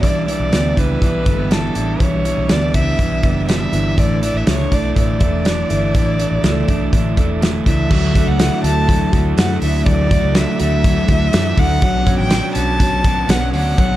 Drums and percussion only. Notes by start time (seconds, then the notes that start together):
0.03 kick, closed hi-hat
0.28 closed hi-hat
0.53 snare, closed hi-hat
0.77 kick, closed hi-hat
1.02 kick, closed hi-hat
1.26 kick, closed hi-hat
1.51 snare, closed hi-hat
1.75 closed hi-hat
2.00 kick, closed hi-hat
2.25 closed hi-hat
2.49 snare, closed hi-hat
2.74 kick, closed hi-hat
2.99 kick, closed hi-hat
3.23 kick, closed hi-hat
3.49 snare, closed hi-hat
3.73 closed hi-hat
3.98 kick, closed hi-hat
4.23 closed hi-hat
4.47 snare, closed hi-hat
4.72 kick, closed hi-hat
4.96 kick, closed hi-hat
5.20 kick, closed hi-hat
5.45 snare, closed hi-hat
5.70 closed hi-hat
5.95 kick, closed hi-hat
6.20 closed hi-hat
6.44 snare, closed hi-hat
6.68 kick, closed hi-hat
6.93 kick, closed hi-hat
7.17 kick, closed hi-hat
7.42 snare, closed hi-hat
7.66 kick, closed hi-hat
7.91 kick, crash
8.15 kick, closed hi-hat
8.39 snare, closed hi-hat
8.64 closed hi-hat
8.89 kick, closed hi-hat
9.13 kick, closed hi-hat
9.38 snare, closed hi-hat
9.62 open hi-hat
9.86 kick, closed hi-hat
10.11 kick, closed hi-hat
10.35 snare, closed hi-hat
10.59 closed hi-hat
10.84 kick, closed hi-hat
11.08 kick, closed hi-hat
11.33 snare, closed hi-hat
11.57 kick, open hi-hat
11.82 kick, closed hi-hat
12.07 kick, closed hi-hat
12.31 snare, closed hi-hat
12.55 closed hi-hat
12.80 kick, closed hi-hat
13.04 kick, closed hi-hat
13.29 snare, closed hi-hat
13.53 open hi-hat
13.78 kick, closed hi-hat